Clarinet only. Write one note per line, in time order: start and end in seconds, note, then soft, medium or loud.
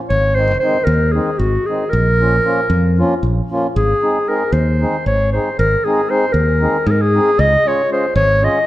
0.09 0.36 C#5 loud
0.35 0.59 C5 loud
0.60 0.86 C5 medium
0.84 1.14 A#4 medium
1.12 1.40 G#4 medium
1.38 1.67 F#4 medium
1.66 1.91 G#4 medium
1.90 3.21 A#4 loud
3.76 4.30 G#4 medium
4.29 4.54 A#4 medium
4.53 5.05 C5 medium
5.07 5.32 C#5 medium
5.32 5.56 C5 medium
5.59 5.86 A#4 loud
5.85 6.12 G#4 medium
6.10 6.34 C5 medium
6.32 6.89 A#4 medium
6.87 6.93 G#4 medium
6.91 7.03 A#4 medium
7.01 7.41 G#4 loud
7.40 7.69 D#5 loud
7.67 7.91 C#5 loud
7.92 8.14 C5 medium
8.16 8.46 C#5 loud
8.44 8.67 D#5 medium